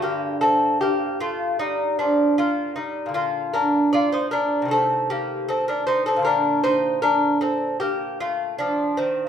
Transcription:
<<
  \new Staff \with { instrumentName = "Lute" } { \time 4/4 \key bes \major \tempo 4 = 77 <bes g'>8 <c' a'>8 <bes g'>8 <a f'>8 <g ees'>8 <f d'>8 <bes f'>8 <g ees'>8 | <bes f'>8 <d' bes'>8 <f' d''>16 <ees' c''>16 <d' bes'>8 <c' a'>8 <bes g'>8 <c' a'>16 <d' bes'>16 <ees' c''>16 <c' a'>16 | <d' bes'>8 <ees' c''>8 <d' bes'>8 <c' a'>8 <bes g'>8 <a f'>8 <f d'>8 <ees c'>8 | }
  \new Staff \with { instrumentName = "Lute" } { \clef bass \time 4/4 \key bes \major <g, d>1 | <bes, d>2 <c ees a>2 | <bes, d bes>1 | }
>>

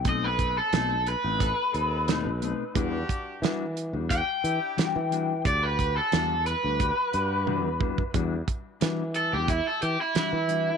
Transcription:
<<
  \new Staff \with { instrumentName = "Overdriven electric guitar" } { \time 4/4 \key e \minor \tempo 4 = 89 dis''16 b'8 a'8. b'2~ b'8~ | b'8 r4. g''2 | d''16 b'8 a'8. b'2~ b'8 | r4. a'16 g'16 e'16 a'16 g'16 e'16 e'4 | }
  \new Staff \with { instrumentName = "Horn section" } { \time 4/4 \key e \minor <c' dis' a'>4 r4 <c' dis' a'>16 r16 <c' dis' a'>8. r8. | <d' fis' g'>4 r4 <d' fis' g'>16 r16 <d' e' g'>8. r8. | <d' fis' g'>4 r4 <d' fis' g'>16 r16 <d' fis' g'>8. r8. | r1 | }
  \new Staff \with { instrumentName = "Clean electric guitar" } { \time 4/4 \key e \minor <b, a c' dis'>16 r8. <b, a c' dis'>16 r8 <a c' dis'>16 r4 <b, a c' dis'>16 r16 <b, a c' dis'>16 r16 | <e g d' fis'>16 r8. <e g d' fis'>16 r8 <g d' fis'>16 r4 <e g d' fis'>16 r16 <e g d' fis'>16 r16 | r4 <e g d' fis'>16 r8 <g d' fis'>16 r4 <e g d' fis'>16 r16 <e g d' fis'>16 r16 | <e g d' fis'>16 r8. <e g d' fis'>16 r8 <g d' fis'>16 r4 <e g d' fis'>16 r16 <e g d' fis'>16 r16 | }
  \new Staff \with { instrumentName = "Fretless electric bass" } { \clef bass \time 4/4 \key e \minor b,,4 b,,8. a,,8 r16 dis,8. b,,8 r16 | e,8 r8 e8. e,8 r16 e16 r8 e8. | d,4 e,8. d,8 r16 g,8. e,8 r16 | e,8 r8 e8. e,8 r16 e16 r8 e8. | }
  \new DrumStaff \with { instrumentName = "Drums" } \drummode { \time 4/4 <hh bd>8 <hh bd>8 <hh sn>8 hh8 <hh bd>8 hh8 <hh sn>8 hh8 | <hh bd>8 <hh bd>8 <hh sn>8 hh8 <hh bd>8 hh8 <hh sn>8 hh8 | <hh bd>8 <hh bd>8 <hh sn>8 hh8 <hh bd>8 hh8 tommh8 bd16 bd16 | <hh bd>8 <hh bd>8 <hh sn>8 hh8 <hh bd>8 hh8 <hh sn>8 hh8 | }
>>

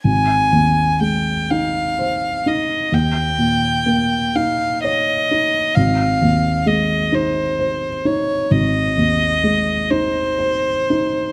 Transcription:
<<
  \new Staff \with { instrumentName = "Violin" } { \time 12/8 \key aes \major \tempo 4. = 43 aes''4 g''8 f''4 ees''8 g''4. f''8 ees''4 | f''4 ees''8 c''4 des''8 ees''4. c''4. | }
  \new Staff \with { instrumentName = "Grand piano" } { \time 12/8 \key aes \major aes,,8 ees,8 aes8 ees'8 c''8 ees'8 ees,8 bes,8 bes8 ees'8 des''8 ees'8 | aes,,8 ees,8 aes8 ees'8 c''8 ees'8 aes,,8 ees,8 aes8 ees'8 c''8 ees'8 | }
>>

